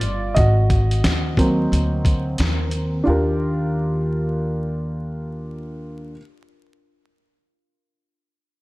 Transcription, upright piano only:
Already playing: F4 D5
0.34 F#4 D#5
1.37 F#3 A#3 C4
3.04 D4 F4 G4
3.10 A#4

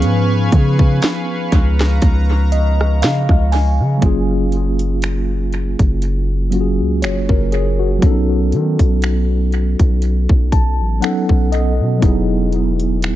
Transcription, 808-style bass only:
0.03 G#2
0.53 C#3
1.53 C#2
2.02 C#2
3.03 C#3
3.29 C#2
3.80 C#3
4.03 F#1
5.80 F#1
6.80 C#2
7.03 F#1
7.29 F#1
8.03 B1
8.53 D#3
8.80 B1
9.80 B1
10.30 B1
10.80 A1
11.30 B1
11.80 B2
12.03 E1
13.03 D#1

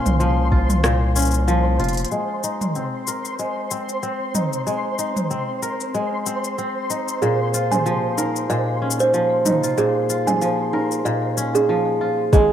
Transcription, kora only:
Already playing: A#2 F3 C#4 F4
0.20 F3
0.52 F4
0.84 A#2
1.16 C#4
1.48 F3
1.80 F4
2.12 G#3
2.44 D#4
2.76 C4
3.08 A#4
3.39 G#3
3.71 C4
4.03 C4
4.35 D#4
4.67 G#3
4.99 D#4
5.31 C4
5.62 A#4
5.94 G#3
6.26 C4
6.58 C4
6.90 D#4
7.22 A#2
7.54 F4
7.86 F3
8.18 A#4
8.50 A#2
8.82 C#4
9.14 F3
9.45 D#4
9.64 F4
9.78 A#2
10.10 F4
10.42 F3
10.73 A#4
11.05 A#2
11.37 C#4
11.69 F3
12.01 F4
12.33 G#3

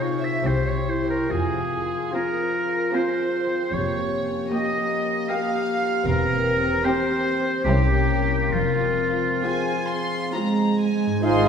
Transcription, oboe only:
0.01 C#5
0.24 E5
0.46 C5
0.68 C#5
0.89 C5
1.10 A#4
1.31 G#4
2.14 A#4
2.95 C5
3.73 C#5
4.53 D#5
5.29 F5
6.07 A#4
6.84 C5
7.64 G4
8.53 F4
11.24 C5

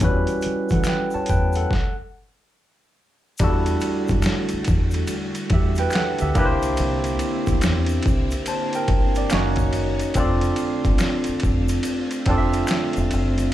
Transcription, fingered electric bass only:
0.02 E2
0.46 muted fingered electric bass stroke
0.72 E3
1.15 muted fingered electric bass stroke
1.31 E2
3.41 E2
4.11 F#2
4.54 muted fingered electric bass stroke
4.69 E2
5.52 E2
6.22 D2
6.37 C2
6.80 C2
7.48 D2
7.65 E2
8.07 C2
8.89 G1
9.33 F#1
10.16 F1
10.86 G1
11.29 muted fingered electric bass stroke
11.45 F1
12.28 F1
12.98 E1
13.13 F#1

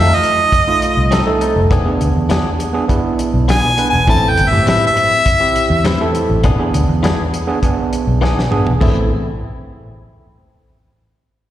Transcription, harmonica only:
Already playing: E5
0.15 D#5
3.50 G#5
3.90 G#5
4.09 A5
4.29 G5
4.49 E5
4.69 E5
4.87 E5

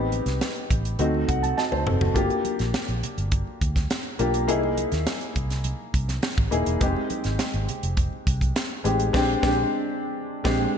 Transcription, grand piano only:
Already playing: B3 C4 D#4 G4
0.99 A3 C4 D#4 F#4
1.28 F#5
1.43 A5
1.57 F#4 D#5 A5
1.72 D#4 C5
1.86 C4 A4
2.00 A3 F#4
2.14 A#3 D4 F4 G4
4.19 A#3 D4 F4 G4
4.48 A#3 D#4 E4 G#4
6.51 A#3 D#4 E4 G#4
6.80 G#3 C4 D#4 G4
8.84 G#3 C4 D#4 G4
9.13 G#3 C4 D4 G4
9.42 G#3 C4 D4 G4
10.44 G#3 C4 D4 G4

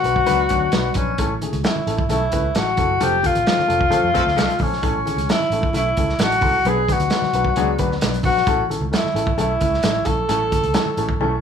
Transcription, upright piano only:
0.05 F#3 B3 D4 B4
0.26 F#3 B3 D4 B4
0.50 F#3 B3 D4 C#5
0.73 F#3 B3 D4 B4
0.96 F#3 B3 D4 B4
1.19 E3 A3 C#4 A4
1.41 E3 A3 C#4 G#4
1.63 E3 A3 C#4 A4
1.87 E3 A3 C#4 A4
2.10 E3 A3 C#4 A4
2.33 E3 A3 C#4 B4
2.55 E3 A3 C#4 A4
2.78 E3 A3 C#4 A4
3.00 F3 A3 C4 A4
3.23 F3 A3 C4 A4
3.46 F3 A3 C4 A4
3.67 F3 A3 C4 A4
3.90 F3 A3 C4 A4
4.14 F3 A3 C4 A4
4.36 F3 A3 C4 A4
4.60 F3 A3 C4 A4
4.82 E3 A3 C#4 A4
5.05 E3 A3 C#4 G#4
5.28 E3 A3 C#4 A4
5.52 E3 A3 C#4 A4
5.74 E3 A3 C#4 E4
5.97 E3 A3 C#4 A4
6.21 E3 A3 C#4 A4
6.43 E3 A3 C#4 A4
6.66 F#3 B3 D4 B4
6.88 F#3 B3 D4 B4
7.11 F#3 B3 D4 B4
7.34 F#3 B3 D4 B4
7.57 F#3 B3 D4 G#4
7.79 F#3 B3 D4 B4
8.02 F#3 B3 D4 B4
8.25 F#3 B3 D4 B4
8.47 E3 A3 C#4 A4
8.70 E3 A3 C#4 A4
8.91 E3 A3 C#4 A4
9.15 E3 A3 C#4 A4
9.37 E3 A3 C#4 A4
9.61 E3 A3 C#4 E4
9.84 E3 A3 C#4 A4
10.06 E3 A3 C#4 A4
10.28 E3 A3 C#4 A4
10.51 E3 A3 C#4 A4
10.74 E3 A3 C#4 A4
10.97 E3 A3 C#4 A4
11.20 E3 A3 C#4 A4

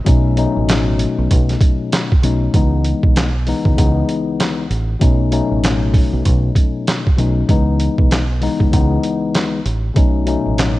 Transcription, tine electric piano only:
0.05 B2 F#3 A3 C#4 D#4
0.36 B2 F#3 A3 C#4 D#4
2.22 B2 F#3 A3 C#4 D#4
2.53 C#2 E3 G#3 B3 D#4
3.46 C#2 E3 G#3 B3 D#4
3.76 C#2 E3 G#3 B3 D#4
4.99 B2 F#3 A3 C#4 D#4
5.31 B2 F#3 A3 C#4 D#4
7.16 B2 F#3 A3 C#4 D#4
7.47 C#2 E3 G#3 B3 D#4
8.40 C#2 E3 G#3 B3 D#4
8.71 C#2 E3 G#3 B3 D#4
9.94 B2 F#3 A3 C#4 D#4
10.26 B2 F#3 A3 C#4 D#4

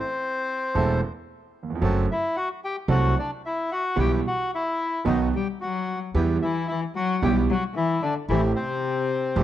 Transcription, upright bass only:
0.75 E1
1.82 F#1
2.88 C2
3.97 B1
5.05 B1
6.14 E2
7.22 B1
8.29 A1
9.36 E1

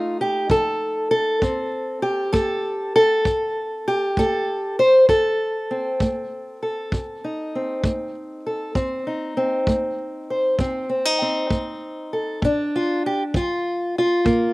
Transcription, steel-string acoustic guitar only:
Already playing: F2 A3 D#4 F4
0.21 G4
0.50 F3 A4
1.11 A4
1.42 F2 C4
2.02 G4
2.33 A3 A4
2.96 A4
3.25 F2
3.88 G4
4.18 A3 A4
4.79 C5
5.09 F2 A4
5.71 C4
6.02 A3
6.63 A4
6.94 F2
7.24 D#4
7.55 C4
7.85 A3
8.46 A4
8.75 F2 C4
9.07 D#4
9.37 C4
9.68 A3
10.30 C5
10.60 F2 C4
10.89 C4
11.05 D#4
11.22 C4
11.50 A3
12.13 A4
12.42 A#2 D4
12.76 F4
13.06 G4
13.34 F3 F4
13.98 F4
14.25 A#2 A#3

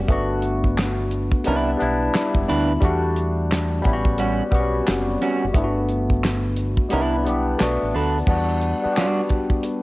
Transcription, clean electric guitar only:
1.47 D4 E4 B4
2.14 muted clean electric guitar stroke
2.48 D4 E4 B4
4.19 G3 C#4 F#4
4.88 muted clean electric guitar stroke
5.21 G3 C#4 F#4
6.92 D4 E4 B4
7.61 muted clean electric guitar stroke
7.95 D4 A4 B4
8.97 G3 D4 F#4

